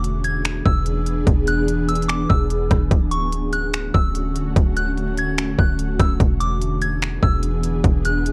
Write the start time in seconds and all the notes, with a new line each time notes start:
Already playing: E1 E3 B3 D4 G#4 D6
0.04 closed hi-hat
0.24 G#6, closed hi-hat
0.45 finger snap, closed hi-hat
0.65 E1 E6, kick
0.86 closed hi-hat
1.06 closed hi-hat
1.27 E1, kick, closed hi-hat
1.47 F#6, closed hi-hat
1.68 closed hi-hat
1.89 E6, closed hi-hat
1.95 closed hi-hat
2.02 closed hi-hat
2.08 D6, finger snap, closed hi-hat
2.29 E1 E6, kick
2.50 closed hi-hat
2.71 E1, kick, cross-stick, closed hi-hat
2.91 D1 D3 A3 C#4 F#4, kick, closed hi-hat
3.12 C#6, closed hi-hat
3.33 closed hi-hat
3.53 F#6, closed hi-hat
3.73 finger snap, closed hi-hat
3.94 D1 E6, kick
4.15 closed hi-hat
4.35 closed hi-hat
4.56 D1, kick, closed hi-hat
4.76 F#6, closed hi-hat
4.97 closed hi-hat
5.17 G#6, closed hi-hat
5.38 finger snap, closed hi-hat
5.59 D1 F#6, kick
5.79 closed hi-hat
6.00 D1 E6, kick, cross-stick, closed hi-hat
6.20 E1 E3 B3 D4 G#4, kick, closed hi-hat
6.40 D6, closed hi-hat
6.62 closed hi-hat
6.82 G#6, closed hi-hat
7.02 finger snap, closed hi-hat
7.23 E1 E6, kick
7.43 closed hi-hat
7.64 closed hi-hat
7.84 E1, kick, closed hi-hat
8.05 F#6, closed hi-hat
8.26 closed hi-hat